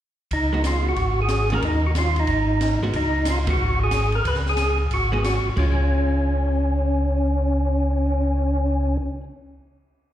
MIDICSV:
0, 0, Header, 1, 6, 480
1, 0, Start_track
1, 0, Tempo, 329128
1, 451, Time_signature, 4, 2, 24, 8
1, 14777, End_track
2, 0, Start_track
2, 0, Title_t, "Tonewheel organ"
2, 0, Program_c, 0, 16
2, 482, Note_on_c, 0, 63, 71
2, 911, Note_off_c, 0, 63, 0
2, 973, Note_on_c, 0, 65, 75
2, 1266, Note_off_c, 0, 65, 0
2, 1294, Note_on_c, 0, 66, 85
2, 1755, Note_off_c, 0, 66, 0
2, 1776, Note_on_c, 0, 68, 93
2, 2190, Note_off_c, 0, 68, 0
2, 2254, Note_on_c, 0, 70, 84
2, 2396, Note_off_c, 0, 70, 0
2, 2406, Note_on_c, 0, 63, 81
2, 2698, Note_off_c, 0, 63, 0
2, 2721, Note_on_c, 0, 66, 77
2, 2786, Note_off_c, 0, 66, 0
2, 2893, Note_on_c, 0, 65, 85
2, 3152, Note_off_c, 0, 65, 0
2, 3202, Note_on_c, 0, 63, 84
2, 4070, Note_off_c, 0, 63, 0
2, 4321, Note_on_c, 0, 63, 83
2, 4788, Note_off_c, 0, 63, 0
2, 4816, Note_on_c, 0, 65, 92
2, 4939, Note_off_c, 0, 65, 0
2, 5113, Note_on_c, 0, 66, 89
2, 5533, Note_off_c, 0, 66, 0
2, 5593, Note_on_c, 0, 68, 102
2, 6057, Note_on_c, 0, 70, 96
2, 6058, Note_off_c, 0, 68, 0
2, 6197, Note_off_c, 0, 70, 0
2, 6233, Note_on_c, 0, 71, 92
2, 6362, Note_off_c, 0, 71, 0
2, 6554, Note_on_c, 0, 68, 106
2, 6974, Note_off_c, 0, 68, 0
2, 7199, Note_on_c, 0, 66, 89
2, 7463, Note_off_c, 0, 66, 0
2, 7485, Note_on_c, 0, 68, 93
2, 7632, Note_off_c, 0, 68, 0
2, 7658, Note_on_c, 0, 66, 76
2, 8013, Note_off_c, 0, 66, 0
2, 8138, Note_on_c, 0, 61, 75
2, 13087, Note_off_c, 0, 61, 0
2, 14777, End_track
3, 0, Start_track
3, 0, Title_t, "Hollow-body jazz guitar"
3, 0, Program_c, 1, 26
3, 769, Note_on_c, 1, 56, 61
3, 785, Note_on_c, 1, 59, 62
3, 787, Note_on_c, 1, 66, 69
3, 1377, Note_off_c, 1, 56, 0
3, 1385, Note_off_c, 1, 59, 0
3, 1386, Note_off_c, 1, 66, 0
3, 2216, Note_on_c, 1, 51, 64
3, 2221, Note_on_c, 1, 58, 69
3, 2227, Note_on_c, 1, 61, 74
3, 2234, Note_on_c, 1, 66, 73
3, 2356, Note_off_c, 1, 51, 0
3, 2359, Note_off_c, 1, 58, 0
3, 2362, Note_off_c, 1, 61, 0
3, 2365, Note_off_c, 1, 66, 0
3, 4124, Note_on_c, 1, 56, 69
3, 4133, Note_on_c, 1, 66, 77
3, 4134, Note_on_c, 1, 59, 66
3, 4265, Note_off_c, 1, 56, 0
3, 4270, Note_off_c, 1, 59, 0
3, 4270, Note_off_c, 1, 66, 0
3, 5065, Note_on_c, 1, 56, 61
3, 5066, Note_on_c, 1, 59, 62
3, 5084, Note_on_c, 1, 66, 64
3, 5215, Note_off_c, 1, 56, 0
3, 5216, Note_off_c, 1, 59, 0
3, 5224, Note_off_c, 1, 66, 0
3, 7468, Note_on_c, 1, 56, 60
3, 7479, Note_on_c, 1, 59, 64
3, 7487, Note_on_c, 1, 66, 79
3, 7618, Note_off_c, 1, 56, 0
3, 7623, Note_off_c, 1, 59, 0
3, 7627, Note_off_c, 1, 66, 0
3, 8115, Note_on_c, 1, 56, 58
3, 8155, Note_on_c, 1, 65, 70
3, 13423, Note_off_c, 1, 56, 0
3, 13462, Note_off_c, 1, 65, 0
3, 14777, End_track
4, 0, Start_track
4, 0, Title_t, "Tonewheel organ"
4, 0, Program_c, 2, 16
4, 449, Note_on_c, 2, 37, 82
4, 1357, Note_off_c, 2, 37, 0
4, 1404, Note_on_c, 2, 32, 89
4, 2311, Note_off_c, 2, 32, 0
4, 2368, Note_on_c, 2, 39, 84
4, 3271, Note_off_c, 2, 39, 0
4, 3315, Note_on_c, 2, 32, 92
4, 4045, Note_off_c, 2, 32, 0
4, 4105, Note_on_c, 2, 44, 68
4, 4261, Note_off_c, 2, 44, 0
4, 4275, Note_on_c, 2, 37, 80
4, 5182, Note_off_c, 2, 37, 0
4, 5232, Note_on_c, 2, 32, 91
4, 6142, Note_off_c, 2, 32, 0
4, 6189, Note_on_c, 2, 37, 85
4, 7102, Note_off_c, 2, 37, 0
4, 7146, Note_on_c, 2, 32, 88
4, 7882, Note_off_c, 2, 32, 0
4, 7929, Note_on_c, 2, 32, 37
4, 8018, Note_off_c, 2, 32, 0
4, 8116, Note_on_c, 2, 37, 88
4, 13076, Note_off_c, 2, 37, 0
4, 14777, End_track
5, 0, Start_track
5, 0, Title_t, "Cymbal swell"
5, 8444, Note_on_c, 9, 59, 44
5, 11873, Note_off_c, 9, 59, 0
5, 14777, End_track
6, 0, Start_track
6, 0, Title_t, "Drums"
6, 450, Note_on_c, 9, 51, 60
6, 452, Note_on_c, 9, 36, 35
6, 596, Note_off_c, 9, 51, 0
6, 598, Note_off_c, 9, 36, 0
6, 929, Note_on_c, 9, 38, 61
6, 931, Note_on_c, 9, 44, 54
6, 931, Note_on_c, 9, 51, 60
6, 1075, Note_off_c, 9, 38, 0
6, 1077, Note_off_c, 9, 44, 0
6, 1077, Note_off_c, 9, 51, 0
6, 1405, Note_on_c, 9, 51, 52
6, 1407, Note_on_c, 9, 36, 31
6, 1551, Note_off_c, 9, 51, 0
6, 1553, Note_off_c, 9, 36, 0
6, 1872, Note_on_c, 9, 38, 64
6, 1873, Note_on_c, 9, 44, 48
6, 1873, Note_on_c, 9, 51, 56
6, 2018, Note_off_c, 9, 38, 0
6, 2019, Note_off_c, 9, 44, 0
6, 2019, Note_off_c, 9, 51, 0
6, 2186, Note_on_c, 9, 51, 42
6, 2332, Note_off_c, 9, 51, 0
6, 2366, Note_on_c, 9, 36, 33
6, 2368, Note_on_c, 9, 51, 59
6, 2512, Note_off_c, 9, 36, 0
6, 2514, Note_off_c, 9, 51, 0
6, 2841, Note_on_c, 9, 38, 62
6, 2842, Note_on_c, 9, 44, 49
6, 2842, Note_on_c, 9, 51, 63
6, 2987, Note_off_c, 9, 38, 0
6, 2988, Note_off_c, 9, 44, 0
6, 2988, Note_off_c, 9, 51, 0
6, 3151, Note_on_c, 9, 51, 43
6, 3297, Note_off_c, 9, 51, 0
6, 3313, Note_on_c, 9, 51, 50
6, 3322, Note_on_c, 9, 36, 28
6, 3459, Note_off_c, 9, 51, 0
6, 3468, Note_off_c, 9, 36, 0
6, 3800, Note_on_c, 9, 38, 62
6, 3802, Note_on_c, 9, 44, 52
6, 3802, Note_on_c, 9, 51, 61
6, 3946, Note_off_c, 9, 38, 0
6, 3948, Note_off_c, 9, 44, 0
6, 3948, Note_off_c, 9, 51, 0
6, 4278, Note_on_c, 9, 51, 63
6, 4279, Note_on_c, 9, 36, 36
6, 4424, Note_off_c, 9, 36, 0
6, 4424, Note_off_c, 9, 51, 0
6, 4741, Note_on_c, 9, 38, 65
6, 4742, Note_on_c, 9, 44, 62
6, 4742, Note_on_c, 9, 51, 69
6, 4887, Note_off_c, 9, 38, 0
6, 4888, Note_off_c, 9, 44, 0
6, 4888, Note_off_c, 9, 51, 0
6, 5060, Note_on_c, 9, 51, 75
6, 5062, Note_on_c, 9, 36, 85
6, 5205, Note_off_c, 9, 51, 0
6, 5207, Note_off_c, 9, 36, 0
6, 5702, Note_on_c, 9, 38, 61
6, 5703, Note_on_c, 9, 44, 49
6, 5703, Note_on_c, 9, 51, 61
6, 5848, Note_off_c, 9, 38, 0
6, 5849, Note_off_c, 9, 44, 0
6, 5849, Note_off_c, 9, 51, 0
6, 6009, Note_on_c, 9, 51, 42
6, 6155, Note_off_c, 9, 51, 0
6, 6192, Note_on_c, 9, 36, 36
6, 6198, Note_on_c, 9, 51, 64
6, 6336, Note_on_c, 9, 38, 27
6, 6338, Note_off_c, 9, 36, 0
6, 6344, Note_off_c, 9, 51, 0
6, 6482, Note_off_c, 9, 38, 0
6, 6503, Note_on_c, 9, 38, 42
6, 6649, Note_off_c, 9, 38, 0
6, 6659, Note_on_c, 9, 38, 59
6, 6661, Note_on_c, 9, 44, 46
6, 6661, Note_on_c, 9, 51, 71
6, 6805, Note_off_c, 9, 38, 0
6, 6807, Note_off_c, 9, 44, 0
6, 6807, Note_off_c, 9, 51, 0
6, 7157, Note_on_c, 9, 51, 59
6, 7158, Note_on_c, 9, 36, 34
6, 7303, Note_off_c, 9, 51, 0
6, 7304, Note_off_c, 9, 36, 0
6, 7645, Note_on_c, 9, 38, 67
6, 7646, Note_on_c, 9, 44, 52
6, 7646, Note_on_c, 9, 51, 61
6, 7790, Note_off_c, 9, 38, 0
6, 7792, Note_off_c, 9, 44, 0
6, 7792, Note_off_c, 9, 51, 0
6, 8118, Note_on_c, 9, 49, 61
6, 8124, Note_on_c, 9, 36, 55
6, 8264, Note_off_c, 9, 49, 0
6, 8270, Note_off_c, 9, 36, 0
6, 14777, End_track
0, 0, End_of_file